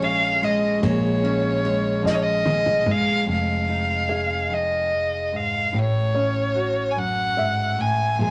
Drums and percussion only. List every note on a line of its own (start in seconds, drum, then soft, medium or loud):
0.02 ride soft
0.43 ride soft
0.83 kick medium
0.83 ride medium
1.25 ride soft
1.65 ride soft
2.05 kick medium
2.05 snare soft
2.46 high tom medium
2.66 mid tom medium
2.86 mid tom medium